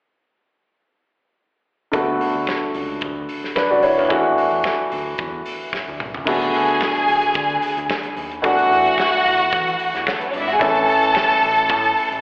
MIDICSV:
0, 0, Header, 1, 5, 480
1, 0, Start_track
1, 0, Tempo, 542005
1, 1716, Time_signature, 4, 2, 24, 8
1, 10813, End_track
2, 0, Start_track
2, 0, Title_t, "String section"
2, 0, Program_c, 0, 48
2, 5553, Note_on_c, 0, 68, 92
2, 5553, Note_on_c, 0, 80, 95
2, 7200, Note_off_c, 0, 68, 0
2, 7200, Note_off_c, 0, 80, 0
2, 7473, Note_on_c, 0, 78, 99
2, 7474, Note_on_c, 0, 66, 101
2, 8898, Note_off_c, 0, 78, 0
2, 8899, Note_off_c, 0, 66, 0
2, 8970, Note_on_c, 0, 57, 53
2, 8971, Note_on_c, 0, 69, 57
2, 9038, Note_off_c, 0, 57, 0
2, 9039, Note_off_c, 0, 69, 0
2, 9044, Note_on_c, 0, 71, 66
2, 9046, Note_on_c, 0, 59, 57
2, 9100, Note_off_c, 0, 71, 0
2, 9101, Note_off_c, 0, 59, 0
2, 9102, Note_on_c, 0, 73, 68
2, 9104, Note_on_c, 0, 61, 60
2, 9154, Note_on_c, 0, 62, 76
2, 9156, Note_on_c, 0, 74, 79
2, 9157, Note_off_c, 0, 73, 0
2, 9158, Note_off_c, 0, 61, 0
2, 9217, Note_on_c, 0, 76, 87
2, 9218, Note_on_c, 0, 64, 85
2, 9219, Note_off_c, 0, 62, 0
2, 9220, Note_off_c, 0, 74, 0
2, 9279, Note_on_c, 0, 78, 94
2, 9281, Note_on_c, 0, 66, 81
2, 9282, Note_off_c, 0, 76, 0
2, 9283, Note_off_c, 0, 64, 0
2, 9335, Note_on_c, 0, 68, 87
2, 9336, Note_on_c, 0, 80, 94
2, 9338, Note_off_c, 0, 78, 0
2, 9339, Note_off_c, 0, 66, 0
2, 9392, Note_on_c, 0, 69, 100
2, 9392, Note_on_c, 0, 81, 109
2, 9394, Note_off_c, 0, 68, 0
2, 9395, Note_off_c, 0, 80, 0
2, 10813, Note_off_c, 0, 69, 0
2, 10813, Note_off_c, 0, 81, 0
2, 10813, End_track
3, 0, Start_track
3, 0, Title_t, "Grand piano"
3, 0, Program_c, 1, 0
3, 1698, Note_on_c, 1, 50, 70
3, 1707, Note_on_c, 1, 57, 66
3, 1715, Note_on_c, 1, 59, 65
3, 1727, Note_on_c, 1, 66, 74
3, 1906, Control_c, 1, 64, 127
3, 3133, Note_off_c, 1, 66, 0
3, 3148, Note_on_c, 1, 71, 66
3, 3154, Note_on_c, 1, 62, 57
3, 3273, Note_off_c, 1, 71, 0
3, 3275, Note_off_c, 1, 62, 0
3, 3279, Note_on_c, 1, 74, 63
3, 3285, Note_on_c, 1, 66, 55
3, 3353, Note_off_c, 1, 50, 0
3, 3357, Note_off_c, 1, 57, 0
3, 3362, Note_off_c, 1, 59, 0
3, 3388, Note_off_c, 1, 74, 0
3, 3391, Note_off_c, 1, 66, 0
3, 3391, Note_on_c, 1, 73, 66
3, 3396, Note_on_c, 1, 64, 53
3, 3514, Note_off_c, 1, 73, 0
3, 3517, Note_off_c, 1, 64, 0
3, 3518, Note_on_c, 1, 71, 53
3, 3523, Note_on_c, 1, 62, 49
3, 3618, Note_on_c, 1, 52, 78
3, 3624, Note_off_c, 1, 62, 0
3, 3628, Note_on_c, 1, 57, 63
3, 3637, Note_on_c, 1, 62, 62
3, 3647, Control_c, 1, 64, 0
3, 3647, Note_on_c, 1, 66, 82
3, 3748, Note_off_c, 1, 71, 0
3, 3816, Control_c, 1, 64, 127
3, 5510, Note_off_c, 1, 52, 0
3, 5516, Note_off_c, 1, 57, 0
3, 5520, Note_off_c, 1, 62, 0
3, 5525, Note_off_c, 1, 66, 0
3, 5538, Note_on_c, 1, 50, 72
3, 5546, Note_on_c, 1, 57, 67
3, 5555, Note_on_c, 1, 59, 68
3, 5564, Note_on_c, 1, 66, 76
3, 5567, Control_c, 1, 64, 0
3, 5703, Control_c, 1, 64, 127
3, 7431, Note_off_c, 1, 50, 0
3, 7435, Note_off_c, 1, 57, 0
3, 7439, Note_off_c, 1, 59, 0
3, 7444, Note_off_c, 1, 66, 0
3, 7457, Note_on_c, 1, 52, 68
3, 7467, Note_on_c, 1, 57, 70
3, 7475, Note_on_c, 1, 62, 69
3, 7483, Note_on_c, 1, 66, 80
3, 7486, Control_c, 1, 64, 0
3, 7623, Control_c, 1, 64, 127
3, 9353, Note_off_c, 1, 52, 0
3, 9357, Note_off_c, 1, 57, 0
3, 9361, Note_off_c, 1, 62, 0
3, 9365, Note_off_c, 1, 66, 0
3, 9380, Note_on_c, 1, 52, 78
3, 9389, Note_on_c, 1, 57, 66
3, 9399, Note_on_c, 1, 61, 70
3, 9406, Control_c, 1, 64, 0
3, 9407, Note_on_c, 1, 69, 75
3, 9536, Control_c, 1, 64, 127
3, 10813, Note_off_c, 1, 52, 0
3, 10813, Note_off_c, 1, 57, 0
3, 10813, Note_off_c, 1, 61, 0
3, 10813, Note_off_c, 1, 69, 0
3, 10813, End_track
4, 0, Start_track
4, 0, Title_t, "Fingered electric bass"
4, 0, Program_c, 2, 33
4, 1715, Note_on_c, 2, 38, 92
4, 1897, Note_off_c, 2, 38, 0
4, 2084, Note_on_c, 2, 38, 78
4, 2169, Note_off_c, 2, 38, 0
4, 2436, Note_on_c, 2, 37, 84
4, 2618, Note_off_c, 2, 37, 0
4, 2675, Note_on_c, 2, 38, 88
4, 2857, Note_off_c, 2, 38, 0
4, 3285, Note_on_c, 2, 37, 81
4, 3370, Note_off_c, 2, 37, 0
4, 3401, Note_on_c, 2, 38, 76
4, 3529, Note_off_c, 2, 38, 0
4, 3529, Note_on_c, 2, 39, 73
4, 3637, Note_off_c, 2, 39, 0
4, 3637, Note_on_c, 2, 40, 90
4, 3818, Note_off_c, 2, 40, 0
4, 4005, Note_on_c, 2, 40, 82
4, 4090, Note_off_c, 2, 40, 0
4, 4362, Note_on_c, 2, 38, 81
4, 4541, Note_off_c, 2, 38, 0
4, 4597, Note_on_c, 2, 40, 91
4, 4778, Note_off_c, 2, 40, 0
4, 5208, Note_on_c, 2, 38, 84
4, 5291, Note_off_c, 2, 38, 0
4, 5324, Note_on_c, 2, 36, 88
4, 5416, Note_off_c, 2, 36, 0
4, 5449, Note_on_c, 2, 37, 85
4, 5532, Note_off_c, 2, 37, 0
4, 5554, Note_on_c, 2, 38, 108
4, 5736, Note_off_c, 2, 38, 0
4, 5804, Note_on_c, 2, 38, 99
4, 5982, Note_off_c, 2, 38, 0
4, 6279, Note_on_c, 2, 38, 88
4, 6459, Note_off_c, 2, 38, 0
4, 6512, Note_on_c, 2, 50, 89
4, 6695, Note_off_c, 2, 50, 0
4, 6881, Note_on_c, 2, 38, 81
4, 6966, Note_off_c, 2, 38, 0
4, 7234, Note_on_c, 2, 39, 78
4, 7416, Note_off_c, 2, 39, 0
4, 7477, Note_on_c, 2, 40, 109
4, 7658, Note_off_c, 2, 40, 0
4, 7715, Note_on_c, 2, 40, 98
4, 7897, Note_off_c, 2, 40, 0
4, 8196, Note_on_c, 2, 40, 89
4, 8377, Note_off_c, 2, 40, 0
4, 8440, Note_on_c, 2, 52, 84
4, 8620, Note_off_c, 2, 52, 0
4, 8807, Note_on_c, 2, 40, 81
4, 8891, Note_off_c, 2, 40, 0
4, 9161, Note_on_c, 2, 32, 82
4, 9341, Note_off_c, 2, 32, 0
4, 9398, Note_on_c, 2, 33, 102
4, 9579, Note_off_c, 2, 33, 0
4, 9642, Note_on_c, 2, 33, 97
4, 9822, Note_off_c, 2, 33, 0
4, 10123, Note_on_c, 2, 33, 84
4, 10360, Note_off_c, 2, 33, 0
4, 10360, Note_on_c, 2, 45, 89
4, 10541, Note_off_c, 2, 45, 0
4, 10730, Note_on_c, 2, 33, 83
4, 10813, Note_off_c, 2, 33, 0
4, 10813, End_track
5, 0, Start_track
5, 0, Title_t, "Drums"
5, 1711, Note_on_c, 9, 42, 70
5, 1714, Note_on_c, 9, 36, 103
5, 1800, Note_off_c, 9, 42, 0
5, 1802, Note_off_c, 9, 36, 0
5, 1956, Note_on_c, 9, 46, 53
5, 2044, Note_off_c, 9, 46, 0
5, 2187, Note_on_c, 9, 42, 57
5, 2189, Note_on_c, 9, 36, 86
5, 2202, Note_on_c, 9, 38, 94
5, 2276, Note_off_c, 9, 42, 0
5, 2278, Note_off_c, 9, 36, 0
5, 2291, Note_off_c, 9, 38, 0
5, 2430, Note_on_c, 9, 46, 52
5, 2519, Note_off_c, 9, 46, 0
5, 2667, Note_on_c, 9, 42, 64
5, 2674, Note_on_c, 9, 36, 110
5, 2756, Note_off_c, 9, 42, 0
5, 2763, Note_off_c, 9, 36, 0
5, 2912, Note_on_c, 9, 46, 61
5, 3001, Note_off_c, 9, 46, 0
5, 3048, Note_on_c, 9, 38, 36
5, 3137, Note_off_c, 9, 38, 0
5, 3153, Note_on_c, 9, 36, 85
5, 3156, Note_on_c, 9, 42, 59
5, 3162, Note_on_c, 9, 38, 93
5, 3242, Note_off_c, 9, 36, 0
5, 3245, Note_off_c, 9, 42, 0
5, 3251, Note_off_c, 9, 38, 0
5, 3389, Note_on_c, 9, 46, 60
5, 3477, Note_off_c, 9, 46, 0
5, 3633, Note_on_c, 9, 42, 72
5, 3634, Note_on_c, 9, 36, 110
5, 3721, Note_off_c, 9, 42, 0
5, 3723, Note_off_c, 9, 36, 0
5, 3877, Note_on_c, 9, 46, 56
5, 3966, Note_off_c, 9, 46, 0
5, 4106, Note_on_c, 9, 42, 62
5, 4110, Note_on_c, 9, 36, 99
5, 4121, Note_on_c, 9, 38, 89
5, 4195, Note_off_c, 9, 42, 0
5, 4198, Note_off_c, 9, 36, 0
5, 4210, Note_off_c, 9, 38, 0
5, 4354, Note_on_c, 9, 46, 56
5, 4442, Note_off_c, 9, 46, 0
5, 4589, Note_on_c, 9, 42, 63
5, 4595, Note_on_c, 9, 36, 107
5, 4677, Note_off_c, 9, 42, 0
5, 4684, Note_off_c, 9, 36, 0
5, 4831, Note_on_c, 9, 46, 67
5, 4920, Note_off_c, 9, 46, 0
5, 5074, Note_on_c, 9, 36, 94
5, 5084, Note_on_c, 9, 38, 52
5, 5162, Note_off_c, 9, 36, 0
5, 5173, Note_off_c, 9, 38, 0
5, 5315, Note_on_c, 9, 45, 88
5, 5404, Note_off_c, 9, 45, 0
5, 5442, Note_on_c, 9, 43, 80
5, 5530, Note_off_c, 9, 43, 0
5, 5550, Note_on_c, 9, 49, 92
5, 5553, Note_on_c, 9, 36, 113
5, 5638, Note_off_c, 9, 49, 0
5, 5641, Note_off_c, 9, 36, 0
5, 5681, Note_on_c, 9, 42, 46
5, 5769, Note_off_c, 9, 42, 0
5, 5791, Note_on_c, 9, 46, 57
5, 5879, Note_off_c, 9, 46, 0
5, 5919, Note_on_c, 9, 42, 42
5, 6008, Note_off_c, 9, 42, 0
5, 6029, Note_on_c, 9, 36, 91
5, 6041, Note_on_c, 9, 38, 111
5, 6117, Note_off_c, 9, 36, 0
5, 6129, Note_off_c, 9, 38, 0
5, 6159, Note_on_c, 9, 42, 42
5, 6248, Note_off_c, 9, 42, 0
5, 6270, Note_on_c, 9, 46, 65
5, 6358, Note_off_c, 9, 46, 0
5, 6390, Note_on_c, 9, 42, 48
5, 6479, Note_off_c, 9, 42, 0
5, 6502, Note_on_c, 9, 42, 62
5, 6511, Note_on_c, 9, 36, 112
5, 6591, Note_off_c, 9, 42, 0
5, 6600, Note_off_c, 9, 36, 0
5, 6637, Note_on_c, 9, 42, 35
5, 6726, Note_off_c, 9, 42, 0
5, 6750, Note_on_c, 9, 46, 68
5, 6839, Note_off_c, 9, 46, 0
5, 6888, Note_on_c, 9, 42, 47
5, 6976, Note_off_c, 9, 42, 0
5, 6993, Note_on_c, 9, 36, 86
5, 7000, Note_on_c, 9, 38, 101
5, 7081, Note_off_c, 9, 36, 0
5, 7089, Note_off_c, 9, 38, 0
5, 7115, Note_on_c, 9, 42, 51
5, 7203, Note_off_c, 9, 42, 0
5, 7232, Note_on_c, 9, 46, 64
5, 7320, Note_off_c, 9, 46, 0
5, 7364, Note_on_c, 9, 42, 43
5, 7452, Note_off_c, 9, 42, 0
5, 7474, Note_on_c, 9, 36, 100
5, 7476, Note_on_c, 9, 42, 70
5, 7563, Note_off_c, 9, 36, 0
5, 7564, Note_off_c, 9, 42, 0
5, 7604, Note_on_c, 9, 42, 49
5, 7693, Note_off_c, 9, 42, 0
5, 7718, Note_on_c, 9, 46, 48
5, 7807, Note_off_c, 9, 46, 0
5, 7845, Note_on_c, 9, 42, 45
5, 7934, Note_off_c, 9, 42, 0
5, 7951, Note_on_c, 9, 36, 92
5, 7966, Note_on_c, 9, 38, 98
5, 8040, Note_off_c, 9, 36, 0
5, 8055, Note_off_c, 9, 38, 0
5, 8083, Note_on_c, 9, 42, 40
5, 8171, Note_off_c, 9, 42, 0
5, 8195, Note_on_c, 9, 46, 56
5, 8283, Note_off_c, 9, 46, 0
5, 8320, Note_on_c, 9, 42, 46
5, 8408, Note_off_c, 9, 42, 0
5, 8431, Note_on_c, 9, 42, 68
5, 8437, Note_on_c, 9, 36, 113
5, 8520, Note_off_c, 9, 42, 0
5, 8526, Note_off_c, 9, 36, 0
5, 8564, Note_on_c, 9, 42, 44
5, 8653, Note_off_c, 9, 42, 0
5, 8673, Note_on_c, 9, 46, 67
5, 8762, Note_off_c, 9, 46, 0
5, 8813, Note_on_c, 9, 38, 36
5, 8814, Note_on_c, 9, 42, 44
5, 8901, Note_off_c, 9, 38, 0
5, 8903, Note_off_c, 9, 42, 0
5, 8916, Note_on_c, 9, 36, 95
5, 8928, Note_on_c, 9, 38, 106
5, 9005, Note_off_c, 9, 36, 0
5, 9017, Note_off_c, 9, 38, 0
5, 9042, Note_on_c, 9, 42, 49
5, 9130, Note_off_c, 9, 42, 0
5, 9153, Note_on_c, 9, 46, 67
5, 9241, Note_off_c, 9, 46, 0
5, 9289, Note_on_c, 9, 42, 43
5, 9377, Note_off_c, 9, 42, 0
5, 9395, Note_on_c, 9, 42, 67
5, 9396, Note_on_c, 9, 36, 104
5, 9483, Note_off_c, 9, 42, 0
5, 9485, Note_off_c, 9, 36, 0
5, 9525, Note_on_c, 9, 42, 45
5, 9613, Note_off_c, 9, 42, 0
5, 9639, Note_on_c, 9, 46, 55
5, 9728, Note_off_c, 9, 46, 0
5, 9764, Note_on_c, 9, 42, 46
5, 9852, Note_off_c, 9, 42, 0
5, 9873, Note_on_c, 9, 36, 90
5, 9888, Note_on_c, 9, 38, 102
5, 9962, Note_off_c, 9, 36, 0
5, 9976, Note_off_c, 9, 38, 0
5, 10006, Note_on_c, 9, 42, 41
5, 10094, Note_off_c, 9, 42, 0
5, 10115, Note_on_c, 9, 46, 57
5, 10204, Note_off_c, 9, 46, 0
5, 10238, Note_on_c, 9, 42, 50
5, 10327, Note_off_c, 9, 42, 0
5, 10351, Note_on_c, 9, 42, 66
5, 10358, Note_on_c, 9, 36, 122
5, 10440, Note_off_c, 9, 42, 0
5, 10447, Note_off_c, 9, 36, 0
5, 10484, Note_on_c, 9, 42, 35
5, 10572, Note_off_c, 9, 42, 0
5, 10600, Note_on_c, 9, 46, 72
5, 10689, Note_off_c, 9, 46, 0
5, 10739, Note_on_c, 9, 42, 46
5, 10813, Note_off_c, 9, 42, 0
5, 10813, End_track
0, 0, End_of_file